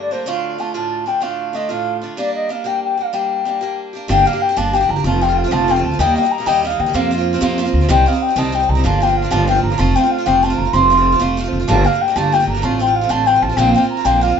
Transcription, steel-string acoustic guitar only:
Already playing: G2 D3 G3 A3 A#3 D4
0.11 G3 A3 A#3 D4
0.26 D2 A2 D3 A3 D4 F4
0.58 D3 A3 D4 F4
0.74 D2 A2 D3 A3 D4 F4
1.06 D3 A3 D4 F4
1.21 D2 A2 D3 A3 D4 F4
1.53 D3 A3 D4 F4
1.69 D2 A2 D3 A3 D4 F4
2.02 D3 A3 D4 F4
2.17 G3 A#3 D4 G4
2.49 G3 A#3 D4 G4
2.64 G3 A#3 D4 G4
2.97 A#3 D4 G4
3.13 G3 A#3 D4 G4
3.45 G3 A#3 D4 G4
3.61 G3 A#3 D4 G4
3.93 A#3 D4 G4
4.08 G3 A#3 D4 G4
4.26 G3 A#3 D4 G4
4.33 A#3 D4 G4
4.49 A#3 D4 G4
4.57 G3 A#3 D4 G4
4.73 G3 A#3 D4 G4
4.81 A#3 D4 G4
4.96 A#3 D4 G4
5.04 F3 A3 C4 F4
5.21 F3 A3 C4 F4
5.29 A3 C4 F4
5.44 A3 C4 F4
5.51 F3 A3 C4 F4
5.68 F3 A3 C4 F4
5.76 A3 C4 F4
5.92 A3 C4 F4
5.99 D#3 G3 A#3 D#4
6.16 D#3 G3 A#3 D#4
6.23 G3 A#3 D#4
6.38 G3 A#3 D#4
6.46 D#3 G3 A#3 D#4
6.63 D#3 G3 A#3 D#4
6.70 G3 A#3 D#4
6.86 G3 A#3 D#4
6.94 F2 C3 F3 A#3 C4 F4
7.11 F3 A#3 C4 F4
7.18 F3 A#3 C4 F4
7.33 F3 A#3 C4 F4
7.41 F2 C3 F3 A#3 C4 F4
7.58 F3 A#3 C4 F4
7.65 F3 A#3 C4 F4
7.81 F3 A#3 C4 F4
7.89 C3 D#3 G3 C4 D#4
8.06 D#3 G3 C4 D#4
8.12 G3 C4 D#4
8.29 G3 C4 D#4
8.36 C3 D#3 G3 C4 D#4
8.52 D#3 G3 C4 D#4
8.60 G3 C4 D#4
8.75 G3 C4 D#4
8.84 G2 D3 F3 A#3 D4 F4
9.00 F3 A#3 D4 F4
9.07 F3 A#3 D4 F4
9.22 F3 A#3 D4 F4
9.30 G2 D3 F3 A#3 D4 F4
9.47 F3 A#3 D4 F4
9.55 F3 A#3 D4 F4
9.70 F3 A#3 D4 F4
9.78 F3 A3 C4 F4
9.96 F3 A3 C4 F4
10.03 A3 C4 F4
10.18 A3 C4 F4
10.26 F3 A3 C4 F4
10.43 F3 A3 C4 F4
10.50 A3 C4 F4
10.65 A3 C4 F4
10.73 F3 A3 C4 F4
10.90 F3 A3 C4 F4
10.97 A3 C4 F4
11.12 A3 C4 F4
11.20 F3 A3 C4 F4
11.37 F3 A3 C4 F4
11.44 A3 C4 F4
11.60 A3 C4 F4
11.68 G2 D3 G3 A3 A#3 D4
11.84 G3 A3 A#3 D4
11.93 G3 A3 A#3 D4
12.08 G3 A3 A#3 D4
12.16 G2 D3 G3 A3 A#3 D4
12.32 G3 A3 A#3 D4
12.40 G3 A3 A#3 D4
12.55 G3 A3 A#3 D4
12.62 A2 D3 A3 C4 F4
12.79 D3 A3 C4 F4
12.87 A3 C4 F4
13.01 A3 C4 F4
13.09 A2 D3 A3 C4 F4
13.26 D3 A3 C4 F4
13.34 A3 C4 F4
13.49 A3 C4 F4
13.58 A#2 D3 A#3 C4 F4
13.74 D3 A#3 C4 F4
13.82 A#3 C4 F4
13.97 A#3 C4 F4
14.05 A#2 D3 A#3 C4 F4
14.21 D3 A#3 C4 F4
14.28 A#3 C4 F4

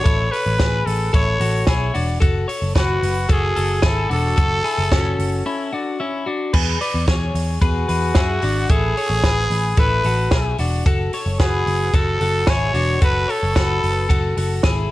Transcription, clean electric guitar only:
0.04 E4 A4
0.31 A4 C#5
0.59 G#4 B4
1.13 E4 A4
1.40 F#4 A4
1.67 E4 G#4
1.94 D4 F#4
2.20 F#4 A4
2.48 A4 C#5
2.75 F#4 B4
3.29 F#4 A4
3.56 F#4 A4
3.82 E4 G#4
4.10 D4 F#4
4.37 F#4 A4
4.64 E4 G#4
4.91 C#4 F#4
5.46 C#4 E4
5.73 D4 F#4
6.00 C#4 E4
6.26 D4 F#4
6.53 G#4 B4
6.81 B4 D5
7.08 G#4 C#5
7.62 G#4 B4
7.88 G#4 B4
8.16 E4 G#4
8.43 D4 F#4
8.70 E4 A4
8.97 A4 C#5
9.24 G#4 B4
9.78 E4 A4
10.05 F#4 A4
10.32 E4 G#4
10.59 D4 F#4
10.86 F#4 A4
11.13 A4 C#5
11.40 F#4 B4
11.94 F#4 A4
12.21 F#4 A4
12.47 E4 G#4
12.74 D4 F#4
13.01 F#4 A4
13.28 A4 C#5
13.55 F#4 B4
14.09 F#4 A4
14.37 F#4 A4
14.64 E4 G#4

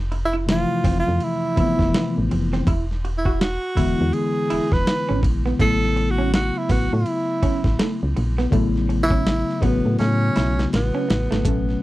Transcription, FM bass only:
Already playing: F1
0.85 F1
1.08 F2
1.58 F1
1.80 F1
2.18 A1
2.33 F1
2.68 E1
3.78 E1
4.01 E2
4.52 E1
4.73 E1
5.11 G#1
5.24 A#1
5.60 A1
6.70 A1
6.93 A2
7.44 A1
7.65 A1
8.03 C#2
8.17 A#1
8.53 A1
9.63 A1
9.86 A2
10.00 A2
10.37 B1
10.74 A1
11.10 A1
11.32 G#1
11.46 A1

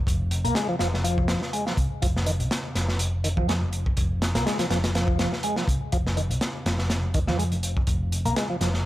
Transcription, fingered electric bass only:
0.07 F1
0.44 C2
0.80 F1
1.77 C2
2.03 F1
2.40 C2
2.75 F1
3.37 F2
3.62 F1
3.98 F1
4.35 C2
4.70 F1
5.67 C2
5.93 F1
6.30 C2
6.66 F1
7.28 F2
7.52 F1
7.87 F1
8.25 C2
8.61 F1

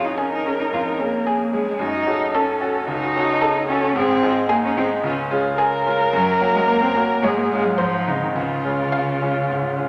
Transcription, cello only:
0.05 D#4
0.18 C#4
0.32 D#4
0.46 C#4
0.60 D#4
0.73 F4
0.87 D#4
1.00 A#3
1.53 G#3
1.80 D#4
2.34 C#4
2.88 D#4
3.68 C#4
3.96 C4
4.49 A#3
4.65 C#4
4.77 C4
5.04 C#4
6.13 F#3
6.55 G#3
6.68 A#3
6.81 C4
6.95 A#3
7.22 G#3
7.36 A#3
7.51 G#3
7.64 F#3
7.78 F3
8.07 C#3
8.23 D#3
8.37 C#3

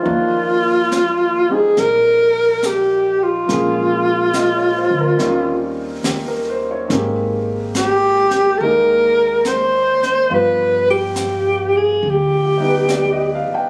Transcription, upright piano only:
Already playing: C5
0.02 D#3 F3 A#3 D4
0.07 F4
1.48 G3 C4 D#4
3.46 F3 G#3 A#3 C#4
3.51 G#4
4.34 D#5
4.56 C#5
4.77 C5
5.00 A#4
5.18 D#3 G3 C4 C#4 F4
6.04 G4
6.27 A#4
6.50 C5
6.71 C#5
6.88 D#3 G#3 A#3
6.92 C4 G4
8.61 G#3 A#3 D#4
10.29 F3 G3 B3 F4
12.46 G4
12.58 G3 B3 D#4
12.68 B4
12.90 D5
13.13 D#5
13.35 F5
13.54 G5

